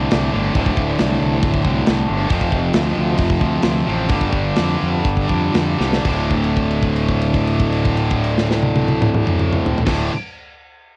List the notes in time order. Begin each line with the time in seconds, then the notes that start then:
Already playing: D2 A2 D3
0.10 C2 D2 A2 D3, snare, open hi-hat
0.33 G1 D2 A2 D3
0.53 D1 D2 A2 D3, kick, open hi-hat
0.66 kick
0.77 D1, kick
0.99 C2, snare, open hi-hat
1.22 C2
1.43 D1, kick, open hi-hat
1.54 kick
1.63 C2 D2 A2 D3, kick
1.85 C2 D2 A2 D3, snare, open hi-hat
2.08 G1 D2 A2 D3
2.29 F1 F2 C3 F3, kick, open hi-hat
2.41 kick
2.52 F1, kick
2.73 D2, snare, open hi-hat
2.98 D2
3.18 F1, kick, open hi-hat
3.30 kick
3.39 D2 F2 C3 F3, kick
3.61 D2 F2 C3 F3, snare, open hi-hat
3.86 A1 F2 C3 F3
4.08 G1 G2 D3 G3, kick, open hi-hat
4.21 kick
4.33 G1, kick
4.56 F2, snare, open hi-hat
4.83 F2
5.05 G1, kick, open hi-hat
5.17 kick
5.27 F2 G2 D3 G3, kick
5.52 F2 G2 D3 G3, snare, open hi-hat
5.78 C2 G2 D3 G3, snare
5.93 snare
6.03 D1 D2 A2 D3, kick, crash
6.30 kick, crash
6.44 crash
6.57 kick, crash
6.70 crash
6.83 kick, crash
6.96 crash
7.08 kick, crash
7.21 crash
7.34 kick, crash
7.47 crash
7.59 kick, crash
7.72 crash
7.85 kick, crash
7.97 crash
8.10 kick, crash
8.24 crash
8.38 snare
8.51 snare
8.63 high tom
8.76 high tom
8.88 high tom
9.02 mid tom
9.14 mid tom
9.27 mid tom
9.39 mid tom
9.53 mid tom
9.66 floor tom
9.78 floor tom
9.85 D1 D2 A2 D3, kick, snare, crash